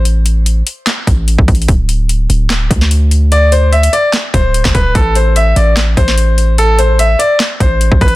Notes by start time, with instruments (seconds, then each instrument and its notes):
Already playing: 808-style bass A1
0.05 closed hi-hat
0.26 closed hi-hat
0.46 closed hi-hat
0.67 closed hi-hat
0.87 snare, clap, closed hi-hat
1.07 808-style bass A1, kick, closed hi-hat
1.28 closed hi-hat
1.38 808-style bass A1, kick
1.48 808-style bass A1, kick, closed hi-hat
1.55 closed hi-hat
1.62 closed hi-hat
1.68 808-style bass D1, kick, closed hi-hat
1.89 closed hi-hat
2.09 closed hi-hat
2.30 808-style bass D1, closed hi-hat
2.50 snare, clap, closed hi-hat
2.71 808-style bass D2, kick, closed hi-hat
2.81 snare
2.91 closed hi-hat
3.11 closed hi-hat
3.32 grand piano D5, closed hi-hat
3.52 grand piano C5, closed hi-hat
3.72 grand piano E5, closed hi-hat
3.83 closed hi-hat
3.93 grand piano D5, closed hi-hat
4.13 snare, clap, closed hi-hat
4.34 808-style bass D1, grand piano C5, kick, closed hi-hat
4.54 closed hi-hat
4.65 808-style bass F1, kick, snare, clap
4.75 808-style bass D1, grand piano B4, kick, closed hi-hat
4.95 808-style bass A1, grand piano A4, kick, closed hi-hat
5.15 grand piano C5, closed hi-hat
5.36 grand piano E5, closed hi-hat
5.56 808-style bass A1, grand piano D5, closed hi-hat
5.77 snare, clap, closed hi-hat
5.97 808-style bass A1, grand piano C5, kick, closed hi-hat
6.08 snare
6.18 closed hi-hat
6.38 closed hi-hat
6.58 grand piano A4, closed hi-hat
6.79 grand piano C5, closed hi-hat
6.99 grand piano E5, closed hi-hat
7.19 grand piano D5, closed hi-hat
7.40 snare, clap, closed hi-hat
7.60 808-style bass A1, grand piano C5, kick, closed hi-hat
7.81 closed hi-hat
7.92 808-style bass A1, kick
8.01 808-style bass A1, grand piano B4, kick, closed hi-hat
8.08 closed hi-hat